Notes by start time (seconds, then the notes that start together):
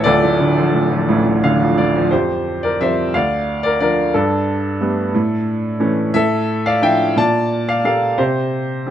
0.04 D1 D2 F4 A4 D5
0.23 A2
0.40 D3
0.57 F3
0.74 A2
0.91 F3
1.09 A1 A2
1.25 A2
1.44 D3 F5
1.61 F3
1.78 A2 D5
1.96 F3
2.11 F2 G4 C5
2.63 A#4 D5
2.81 F3 G3 C4 C5 E5
3.14 D2 D5 F5
3.63 A#4 D5
3.80 F3 D4 A#4 D5
4.14 G2 D4 A4
4.81 G3 A3 B3
5.14 A2
5.80 E3 A3 C#4
6.14 A2 A4 E5
6.66 D5 F5
6.82 F3 D4 E4 E5 G5
7.16 A#2 D5 A5
7.69 D5 F5
7.84 A#3 G4 A4 D5 F5
8.18 C3 G4 C5
8.86 C4 F4